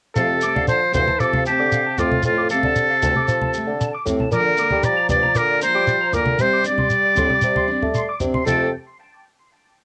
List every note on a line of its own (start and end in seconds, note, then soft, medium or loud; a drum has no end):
0.15 0.40 F2 medium
0.15 0.65 C3 medium
0.15 0.32 F3 medium
0.15 0.32 A3 medium
0.15 0.33 C4 medium
0.15 0.33 G4 medium
0.15 0.64 A4 medium
0.15 0.25 F5 medium
0.15 shekere medium
0.41 0.59 A3 soft
0.41 0.59 C4 soft
0.41 0.57 G4 medium
0.41 0.52 D6 medium
0.41 shekere medium
0.55 0.80 D3 medium
0.55 0.65 F5 medium
0.55 high conga medium
0.68 0.93 F3 medium
0.68 0.92 C5 medium
0.68 0.78 A5 medium
0.68 shekere medium
0.92 1.07 D2 medium
0.92 1.24 E3 medium
0.92 1.11 A3 soft
0.92 1.09 G4 soft
0.92 1.21 C5 medium
0.92 1.04 F5 medium
0.92 muted steel-string acoustic guitar stroke soft
0.92 high conga medium
0.92 low conga medium
0.92 shekere medium
1.08 1.17 A5 medium
1.08 high conga medium
1.19 1.47 C3 medium
1.19 1.45 F3 medium
1.19 1.46 A4 medium
1.19 1.30 D6 medium
1.19 shekere medium
1.33 1.43 F5 medium
1.33 high conga medium
1.45 2.02 C3 medium
1.45 1.63 C4 soft
1.45 1.61 G4 soft
1.45 2.00 G4 medium
1.45 1.56 A5 medium
1.45 shekere medium
1.49 1.64 A3 soft
1.59 1.84 D3 medium
1.59 1.68 D6 medium
1.72 1.82 F5 medium
1.72 shekere medium
1.86 1.95 A5 medium
1.97 2.23 F2 medium
1.97 2.25 A2 medium
1.97 2.15 A3 soft
1.97 2.14 C4 soft
1.97 2.24 F4 medium
1.97 2.13 G4 soft
1.97 2.08 D6 medium
1.97 low conga medium
1.97 shekere medium
2.11 high conga medium
2.23 2.49 F2 medium
2.23 2.49 A2 medium
2.23 2.49 F4 medium
2.23 shekere medium
2.38 2.47 D6 medium
2.50 4.03 C3 medium
2.50 2.67 C4 soft
2.50 2.66 G4 soft
2.50 4.02 A4 loud
2.50 2.60 F5 medium
2.50 shekere medium
2.54 2.68 A3 soft
2.63 2.88 D3 medium
2.63 2.73 A5 medium
2.63 high conga medium
2.76 shekere medium
2.89 2.98 F5 medium
3.02 3.15 D2 medium
3.02 3.20 A3 soft
3.02 3.18 G4 soft
3.02 3.12 A5 medium
3.02 high conga medium
3.02 low conga medium
3.02 shekere medium
3.16 3.25 D6 medium
3.16 high conga medium
3.28 3.52 F3 medium
3.28 shekere medium
3.42 3.50 A5 medium
3.42 high conga medium
3.53 3.71 A3 soft
3.53 3.70 G4 medium
3.53 muted steel-string acoustic guitar stroke soft
3.53 shekere medium
3.67 3.91 D3 medium
3.80 3.90 A5 medium
3.80 shekere loud
3.94 4.03 D6 medium
4.05 4.30 A2 medium
4.05 4.23 A3 soft
4.05 4.23 C4 medium
4.05 4.22 G4 medium
4.05 low conga medium
4.05 shekere medium
4.20 4.29 A5 medium
4.20 high conga medium
4.31 4.56 A#2 medium
4.31 4.89 D3 medium
4.31 4.47 F3 medium
4.31 4.48 A#3 medium
4.31 4.49 D4 medium
4.31 4.86 A#4 medium
4.31 4.42 D5 medium
4.31 shekere loud
4.57 4.75 A#3 soft
4.57 4.74 D4 soft
4.57 4.68 D6 medium
4.57 shekere medium
4.70 4.96 G3 medium
4.70 4.81 D5 medium
4.70 high conga medium
4.83 5.09 D5 medium
4.83 4.93 A#5 medium
4.83 shekere loud
4.87 5.11 F3 medium
4.96 5.06 A#5 medium
5.09 5.22 G2 medium
5.09 5.40 F3 medium
5.09 5.25 D4 medium
5.09 5.19 D5 medium
5.09 5.39 D5 medium
5.09 high conga medium
5.09 low conga medium
5.09 shekere medium
5.13 5.27 A#3 soft
5.23 5.32 A#5 medium
5.23 high conga medium
5.35 5.60 A#2 medium
5.35 5.63 D3 medium
5.35 5.62 A#4 medium
5.35 5.45 D6 medium
5.35 shekere medium
5.48 5.58 D5 medium
5.61 5.79 A#3 soft
5.61 5.77 D4 medium
5.61 6.10 C5 medium
5.61 5.71 A#5 medium
5.61 shekere medium
5.66 6.12 F3 medium
5.75 5.99 G3 medium
5.75 5.84 D6 medium
5.87 5.97 D5 medium
5.87 shekere medium
6.01 6.10 A#5 medium
6.12 6.38 A#2 medium
6.12 6.30 A#3 soft
6.12 6.28 D4 soft
6.12 6.43 A#4 medium
6.12 6.23 D6 medium
6.12 low conga medium
6.12 shekere medium
6.16 6.43 D3 medium
6.26 high conga medium
6.38 6.64 C3 medium
6.38 6.55 G3 medium
6.38 6.66 G3 medium
6.38 6.55 C4 medium
6.38 6.66 C5 medium
6.38 muted steel-string acoustic guitar stroke medium
6.38 shekere medium
6.53 6.62 D6 medium
6.64 6.82 C4 soft
6.64 6.81 D4 soft
6.64 6.75 D5 medium
6.64 8.18 D5 medium
6.64 shekere medium
6.69 8.19 G3 medium
6.78 6.88 C6 medium
6.78 high conga medium
6.90 shekere medium
7.05 7.14 D5 medium
7.15 7.30 A2 medium
7.15 7.34 C4 soft
7.15 7.32 D4 medium
7.15 7.27 C6 medium
7.15 high conga medium
7.15 low conga medium
7.15 shekere medium
7.30 7.39 D6 medium
7.30 high conga medium
7.41 7.68 C3 medium
7.41 shekere medium
7.56 7.66 C6 medium
7.56 high conga medium
7.68 7.86 C4 soft
7.68 7.84 D4 medium
7.82 8.07 A3 medium
7.82 low conga medium
7.94 8.04 C6 medium
7.94 shekere medium
8.09 8.18 D6 medium
8.20 8.45 C3 medium
8.20 8.36 D4 medium
8.20 low conga medium
8.20 shekere medium
8.24 8.38 C4 soft
8.34 8.43 C6 medium
8.34 high conga medium
8.45 8.71 F2 medium
8.45 8.67 F3 medium
8.45 8.67 A3 medium
8.45 8.68 C4 medium
8.45 8.68 G4 medium
8.45 8.71 A4 medium
8.45 8.71 G5 medium
8.45 8.71 A5 medium
8.45 muted clean electric guitar stroke medium
8.45 high conga medium
8.45 shekere medium
8.50 8.73 C3 medium